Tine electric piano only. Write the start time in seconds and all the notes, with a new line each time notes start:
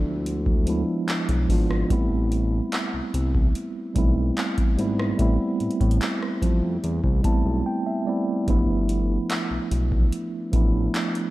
Already playing: F3 G#3 B3 D4 E4
0.66 F3 G#3 B3 D4
0.70 E4
1.48 F3 G#3 B3 D4 F4
1.89 G3 A3 B3 C4
1.93 E4
3.94 G3 A3 B3 C4
3.98 E4
4.77 G3 A3 B3 C4 E4
5.18 G3 A3 B3 C4
5.22 E4
7.23 G3 A3 B3 C4 A5
7.27 E4
7.66 G5
7.86 E5
8.05 G3 A3 B3 C4 E4 D5
8.46 F3 A3 B3 D4 E4
10.52 F3 A3 B3 D4
10.56 E4